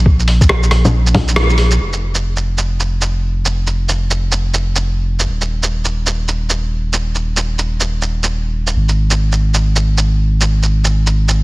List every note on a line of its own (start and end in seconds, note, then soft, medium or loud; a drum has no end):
0.00 1.79 A#1 medium
0.06 kick loud
0.20 shaker soft
0.28 open hi-hat medium
0.41 kick medium
0.41 shaker medium
0.49 cross-stick loud
0.63 shaker soft
0.71 cross-stick medium
0.71 open hi-hat medium
0.85 low bongo soft
0.85 shaker medium
1.06 shaker soft
1.14 kick medium
1.14 open hi-hat medium
1.14 low bongo medium
1.28 shaker medium
1.36 cross-stick medium
1.36 open hi-hat soft
1.50 shaker soft
1.58 open hi-hat medium
1.71 shaker medium
1.79 5.26 F1 medium
1.93 shaker soft
2.15 shaker medium
2.37 shaker soft
2.58 shaker medium
2.80 shaker soft
3.01 shaker medium
3.45 shaker medium
3.67 shaker soft
3.89 shaker medium
4.10 shaker soft
4.32 shaker medium
4.54 shaker soft
4.76 shaker medium
5.19 shaker soft
5.28 8.74 D#1 medium
5.41 shaker soft
5.63 shaker medium
5.85 shaker soft
6.06 shaker medium
6.28 shaker soft
6.50 shaker soft
6.93 shaker medium
7.15 shaker soft
7.37 shaker soft
7.59 shaker soft
7.80 shaker soft
8.02 shaker soft
8.23 shaker soft
8.67 shaker soft
8.76 11.43 G#1 medium
8.89 shaker soft
9.11 shaker soft
9.32 shaker soft
9.54 shaker soft
9.76 shaker soft
9.98 shaker soft
10.41 shaker soft
10.63 shaker soft
10.84 shaker soft
11.07 shaker soft
11.28 shaker soft